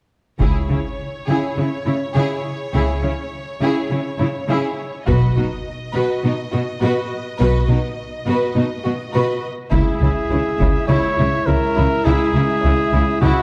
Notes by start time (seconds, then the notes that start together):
0.40 C#2 C#3 E4 G#4 C#5, taiko
0.69 C#3 C#4 E4
1.28 C#3 E4 G#4
1.57 C#3 C#4 E4
1.86 C#3 E4
2.15 C#3 E4 G#4
2.73 C#2 C#3 E4 G#4
3.03 C#3 C#4 E4
3.61 C#3 E4 G#4
3.90 C#3 C#4 E4
4.18 C#3 E4
4.48 C#3 E4 G#4
5.06 B1 B2 F#4 B4 D#5, taiko
5.36 B2 D#4 F#4
5.94 B2 F#4 B4
6.24 B2 D#4 F#4
6.53 B2 F#4
6.81 B2 F#4 B4
7.39 B1 B2 F#4 B4
7.69 B2 D#4 F#4
8.26 B2 F#4 B4
8.55 B2 D#4 F#4
8.83 B2 F#4
9.13 B2 F#4 B4
9.71 C#2 C#3 G#3 E4 G#4 E5, taiko
9.99 C#2 C#3 E4
10.30 C#2 C#3 C#4 E4
10.59 C#2 C#3 E4, taiko
10.88 C#2 C#3 E4 C#5
11.17 C#2 C#3 E4
11.47 C#2 C#3 C#4 E4 A#4
11.76 C#2 C#3 E4
12.05 C#2 C#3 E4 G#4
12.34 C#2 C#3 E4
12.62 C#2 C#3 C#4 E4
12.93 C#2 C#3 E4
13.21 C#2 C#3 E4 F#4